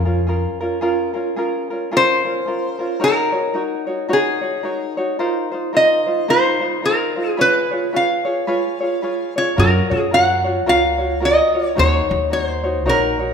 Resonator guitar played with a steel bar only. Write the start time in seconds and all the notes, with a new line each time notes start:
Already playing: G#4
1.97 C5
3.04 A#4
4.13 G#4
5.77 D#5
6.30 C5
6.86 A#4
7.30 G#4
7.41 B4
7.96 F5
9.38 C#5
9.59 A#4
10.14 F#5
10.69 F5
11.25 D#5
11.68 C#5
11.79 C#5
12.33 C#5
12.44 C5
12.89 A#4